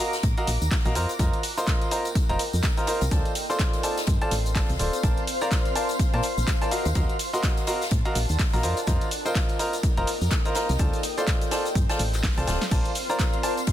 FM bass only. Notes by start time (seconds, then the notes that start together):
0.23 A2
0.47 A#1
0.61 D#2
0.85 A#1
0.95 F2
1.19 F2
2.29 F1
2.53 F2
3.02 C2
3.11 D2
4.07 G2
4.31 A1
4.70 C2
4.79 D1
5.03 A#1
6.14 A#2
6.38 A#1
6.86 D#2
6.95 D#2
7.91 A2
8.15 A#1
8.29 D#2
8.54 A#1
8.63 F2
8.87 F2
9.97 F1
10.21 F2
10.69 C2
10.79 D2
11.75 G2
11.99 A1
12.37 C2
12.47 D1
12.71 A#1